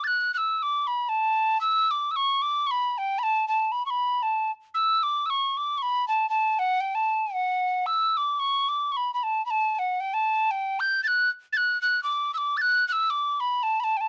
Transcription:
tin whistle
0.04 F#6 A6
0.34 E6 F#6
0.58 E6
0.63 D6
0.87 B5
1.09 A5
1.61 E6
1.91 D6
2.11 E6
2.16 C#6
2.42 D6
2.67 C#6
2.71 B5
2.98 G5
3.19 B5
3.23 A5
3.48 A5
3.72 B5
3.86 C#6
3.90 B5
4.23 A5
4.74 E6
5.03 D6
5.26 E6
5.30 C#6
5.57 D6
5.78 C#6
5.82 B5
6.08 A5
6.30 A5
6.59 F#5
6.80 G5
6.95 A5
7.34 F#5
7.86 E6
8.17 D6
8.40 C#6
8.69 D6
8.92 C#6
8.97 B5
9.14 B5
9.23 A5
9.46 B5
9.50 A5
9.75 F#5 A5
10.00 G5
10.14 A5
10.51 G5
10.80 G6
11.04 F#6 A6
11.53 A6
11.57 F#6
11.82 F#6
12.03 D6
12.34 D6 E6
12.57 A6
12.62 F#6
12.88 F#6
12.92 E6
13.10 D6
13.40 B5
13.63 A5
13.80 A5 B5
13.97 G5 A5

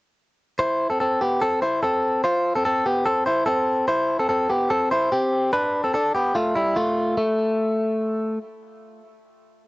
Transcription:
clean electric guitar
0.59 E4 C5
0.90 C4 A4
1.00 C4 A4
1.21 B3 G4
1.41 C4 A4
1.62 E4 C5
1.83 C4 A4
2.24 F4 C5
2.55 C4 A4
2.65 C4 A4
2.86 B3 G4
3.06 C4 A4
3.26 E4 C5
3.46 C4 A4
3.88 E4 C5
4.19 C4 A4
4.29 C4 A4
4.49 B3 G4
4.70 C4 A4
4.91 E4 C5
5.12 C4 G4
5.53 D4 B4
5.84 C4 A4
5.94 D4 A4
6.15 B3 G4
6.35 A3 F4
6.55 G3 E4
6.76 A3 F4
7.17 A3

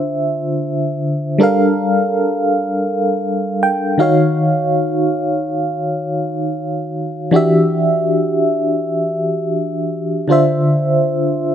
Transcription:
fm electric piano
Already playing: D3 D4 F4 C5 E5
1.38 G3 D4 A4 A#4
1.43 F5
3.63 G5
3.98 D#3 D#4 F#4 C#5 F5
4.02 F5
7.31 E3 D4 F#4 G4
7.36 E5
10.28 D3 D4 F4 C5
10.32 E5

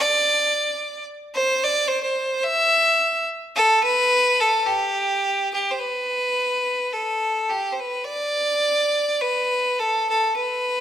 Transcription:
fiddle
0.00 D5
1.34 C5
1.64 D5
1.88 C5
2.03 C5
2.43 E5
3.56 A4
3.84 B4
4.40 A4
4.66 G4
5.54 G4
5.71 C5
5.79 B4
6.93 A4
7.50 G4
7.72 C5
7.80 B4
8.05 D5
9.22 B4
9.79 A4
10.10 A4
10.36 B4

